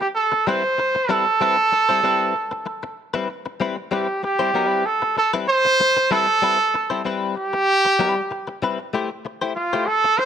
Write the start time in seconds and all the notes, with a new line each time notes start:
0.01 G4, muted clean electric guitar stroke
0.15 A4
0.32 muted clean electric guitar stroke
0.47 G3 C4 E4 B4 C5
0.64 muted clean electric guitar stroke
0.78 muted clean electric guitar stroke
0.95 muted clean electric guitar stroke
1.09 G3 C4 E4 A4 B4
1.26 muted clean electric guitar stroke
1.41 G3 C4 E4 B4
1.57 muted clean electric guitar stroke
1.72 muted clean electric guitar stroke
1.89 G3 C4 E4 C5
2.03 G3 C4 E4 B4
2.35 muted clean electric guitar stroke
2.51 muted clean electric guitar stroke
2.66 muted clean electric guitar stroke
2.83 muted clean electric guitar stroke
3.14 G3 C4 E4 B4
3.29 muted clean electric guitar stroke
3.46 muted clean electric guitar stroke
3.60 G3 C4 E4 B4
3.77 muted clean electric guitar stroke
3.91 G3 C4 E4 G4 B4
4.08 muted clean electric guitar stroke
4.23 G4, muted clean electric guitar stroke
4.39 G3 C4 E4 C5
4.54 F#3 B3 D#4 A#4
4.66 G3 C4 E4 B4
4.85 A4, muted clean electric guitar stroke
5.02 muted clean electric guitar stroke
5.17 A4, muted clean electric guitar stroke
5.33 G3 C4 E4 B4
5.48 C5, muted clean electric guitar stroke
5.65 muted clean electric guitar stroke
5.80 muted clean electric guitar stroke
5.97 muted clean electric guitar stroke
6.11 G3 C4 E4 A4 B4
6.28 muted clean electric guitar stroke
6.42 G3 C4 E4 B4
6.59 muted clean electric guitar stroke
6.74 muted clean electric guitar stroke
6.90 G3 C4 E4 C5
7.05 G3 C4 E4 B4
7.36 G4, muted clean electric guitar stroke
7.53 muted clean electric guitar stroke
7.85 muted clean electric guitar stroke
7.99 G3 C4 E4 B4
8.16 muted clean electric guitar stroke
8.31 muted clean electric guitar stroke
8.47 muted clean electric guitar stroke
8.62 G3 C4 E4 B4
8.80 muted clean electric guitar stroke
8.93 A3 E4 G4 C5
9.10 muted clean electric guitar stroke
9.25 muted clean electric guitar stroke
9.42 A3 E4 G4 C5
9.56 F4, muted clean electric guitar stroke
9.73 A3 E4 G4 C5
9.87 A4, muted clean electric guitar stroke
10.04 muted clean electric guitar stroke
10.18 C5, muted clean electric guitar stroke